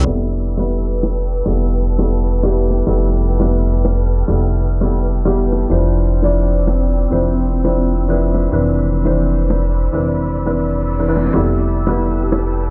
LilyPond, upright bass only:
\new Staff \with { instrumentName = "Upright bass" } { \clef bass \time 4/4 \key f \lydian \tempo 4 = 170 f,,1 | f,,1 | f,,1 | f,,1 |
f,,1 | f,,1 | f,,1 | f,,1 |
f,,1 | }